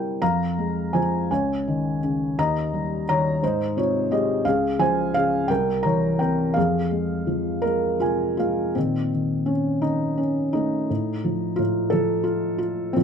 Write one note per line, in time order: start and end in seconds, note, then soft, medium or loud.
0.00 0.17 C3 soft
0.00 0.19 G3 soft
0.00 0.18 C4 soft
0.00 0.23 E4 soft
0.00 0.20 A#4 soft
0.00 0.23 C5 medium
0.00 0.23 G5 medium
0.22 1.28 F2 soft
0.22 0.91 F5 medium
0.22 0.97 A#5 medium
0.58 1.29 G#3 soft
0.93 1.30 F3 soft
0.93 1.28 C5 medium
0.93 1.29 G#5 medium
1.31 2.35 C#2 medium
1.31 1.99 C#5 medium
1.31 1.99 G#5 medium
1.68 2.36 D#3 medium
2.03 2.37 C#3 medium
2.38 3.39 D#2 medium
2.38 3.04 D#5 medium
2.38 3.07 A#5 loud
2.73 3.40 G3 soft
3.09 3.42 D#3 soft
3.09 3.40 C#5 medium
3.09 3.40 A#5 medium
3.43 4.42 G#2 medium
3.43 3.75 D#4 medium
3.43 3.78 C5 medium
3.77 4.43 C3 medium
3.77 4.09 F4 medium
3.77 4.12 C#5 medium
4.11 4.44 G#3 medium
4.11 4.44 G4 medium
4.11 4.43 D#5 medium
4.45 5.47 C#2 medium
4.45 4.78 G#4 medium
4.45 4.81 F5 medium
4.79 5.48 F3 soft
4.79 5.13 C5 medium
4.79 5.16 G#5 medium
5.14 5.48 C#3 medium
5.14 5.48 G#4 medium
5.14 5.47 F5 medium
5.48 6.53 C2 medium
5.48 5.83 A#4 medium
5.48 5.82 G5 medium
5.83 6.54 E3 medium
5.83 6.18 C#5 medium
5.83 6.17 A#5 medium
6.19 6.55 C3 soft
6.19 6.54 A#4 medium
6.19 6.56 G5 medium
6.54 8.72 F2 medium
6.54 7.98 G#4 medium
6.54 7.97 F5 medium
6.91 7.63 G#3 soft
7.27 8.71 F3 soft
7.62 8.38 G#3 soft
7.62 8.02 A#4 medium
8.00 8.74 C3 soft
8.00 8.36 F4 medium
8.00 8.36 G#5 medium
8.37 8.75 G#3 soft
8.37 8.76 F4 medium
8.37 8.73 F5 medium
8.75 10.86 A#2 soft
8.75 9.11 D#3 soft
8.75 9.51 C4 medium
9.13 9.83 D#3 soft
9.46 9.81 C#4 medium
9.82 10.87 D#3 soft
9.82 10.20 D#4 medium
10.18 10.51 C#4 medium
10.53 11.55 A3 soft
10.53 11.61 D#4 medium
10.90 11.57 A2 soft
11.24 11.92 F3 soft
11.56 12.92 A2 soft
11.56 11.89 F4 medium
11.90 12.93 F3 soft
11.90 12.23 A4 medium
12.24 12.57 F4 medium
12.58 12.92 F4 medium
12.93 13.03 A#2 medium
12.93 13.03 F3 medium
12.93 13.03 C4 medium